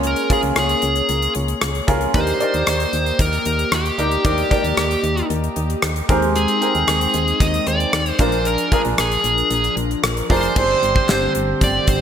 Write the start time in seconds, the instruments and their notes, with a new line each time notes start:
Already playing: fm bass C#2, analog polysynth A#3 G#4 C#5, grand piano C#4 F4 G#4 A#4
0.03 lead electric guitar A#4, closed hi-hat
0.16 closed hi-hat
0.30 grand piano C#4 F4 G#4 A#4, lead electric guitar G#4, kick, closed hi-hat
0.43 fm bass C#2, closed hi-hat
0.56 fm bass C#2, lead electric guitar G#4, cross-stick, closed hi-hat
0.69 closed hi-hat
0.82 fm bass C#2, closed hi-hat
0.96 closed hi-hat
1.09 fm bass C#2, closed hi-hat
1.22 closed hi-hat
1.35 fm bass C#2, closed hi-hat
1.48 closed hi-hat
1.61 fm bass C#2, cross-stick, closed hi-hat
1.75 closed hi-hat
1.87 fm bass C#2, grand piano C#4 F4 G#4 A#4, kick, closed hi-hat
2.01 closed hi-hat
2.14 fm bass D#2, analog polysynth A#3 G4 D#5, grand piano D4 D#4 G4 A#4, lead electric guitar C5, kick, closed hi-hat
2.27 closed hi-hat
2.40 grand piano D#4 G4 A#4 D5, closed hi-hat
2.54 fm bass D#2, closed hi-hat
2.67 fm bass D#2, cross-stick, closed hi-hat
2.80 closed hi-hat
2.93 fm bass D#2, closed hi-hat
3.06 closed hi-hat
3.19 fm bass D#2, lead electric guitar A#4, kick, closed hi-hat
3.33 closed hi-hat
3.45 fm bass D#2, closed hi-hat
3.59 closed hi-hat
3.72 fm bass D#2, lead electric guitar G4, cross-stick, closed hi-hat
3.86 closed hi-hat
3.98 fm bass D2, grand piano D4 D#4 G4 A#4, closed hi-hat
4.11 closed hi-hat
4.24 fm bass D#2, grand piano D4 D#4 G4 A#4, lead electric guitar G4, kick, closed hi-hat
4.38 closed hi-hat
4.51 grand piano D#4 G4 A#4 D5, kick, closed hi-hat
4.64 fm bass D#2, closed hi-hat
4.77 fm bass D#2, cross-stick, closed hi-hat
4.91 closed hi-hat
5.03 fm bass D#2, closed hi-hat
5.17 closed hi-hat
5.30 fm bass D#2, closed hi-hat
5.44 closed hi-hat
5.56 fm bass D#2, closed hi-hat
5.70 closed hi-hat
5.82 fm bass D#2, cross-stick, closed hi-hat
5.96 closed hi-hat
6.09 fm bass D#2, analog polysynth G#3 D#4 C5, grand piano C4 G4 G#4 A#4, kick, closed hi-hat
6.22 closed hi-hat
6.35 lead electric guitar G#4, closed hi-hat
6.48 closed hi-hat
6.61 grand piano C4 G#4 A#4 G5, closed hi-hat
6.75 fm bass D#2, closed hi-hat
6.88 fm bass D#2, cross-stick, closed hi-hat
7.01 closed hi-hat
7.14 fm bass D#2, closed hi-hat
7.28 closed hi-hat
7.40 fm bass D#2, lead electric guitar D#5, kick, closed hi-hat
7.54 closed hi-hat
7.67 fm bass D#2, lead electric guitar D5, closed hi-hat
7.80 closed hi-hat
7.93 fm bass D#2, cross-stick, closed hi-hat
8.06 closed hi-hat
8.19 fm bass A#1, analog polysynth F3 D4 A#4, grand piano D4 F4 G#4 A#4, lead electric guitar C5, kick, closed hi-hat
8.32 closed hi-hat
8.45 lead electric guitar A#4, closed hi-hat
8.58 closed hi-hat
8.72 grand piano D4 F4 G#4 A#4, lead electric guitar G#4, kick, closed hi-hat
8.85 fm bass A#1, closed hi-hat
8.98 fm bass A#1, lead electric guitar G#4, cross-stick, closed hi-hat
9.12 closed hi-hat
9.24 fm bass A#1, closed hi-hat
9.38 closed hi-hat
9.50 fm bass A#1, closed hi-hat
9.64 closed hi-hat
9.76 fm bass A#1, closed hi-hat
9.91 closed hi-hat
10.03 fm bass A#1, cross-stick, closed hi-hat
10.17 closed hi-hat
10.30 fm bass F1, grand piano D4 F4 G#4 A#4, lead electric guitar C5, kick, open hi-hat
10.43 closed hi-hat
10.56 fm bass G1, analog synth pad D3 G3 C4 G4, grand piano C4 D4 G4 C5, kick, crash
10.83 fm bass G1, closed hi-hat
10.96 kick
11.09 fm bass G1, grand piano C4 D4 G4 C5, snare, clap, closed hi-hat
11.35 fm bass G1, closed hi-hat
11.61 fm bass G1, lead electric guitar D5, kick, closed hi-hat
11.87 fm bass G1, lead electric guitar C5, kick, closed hi-hat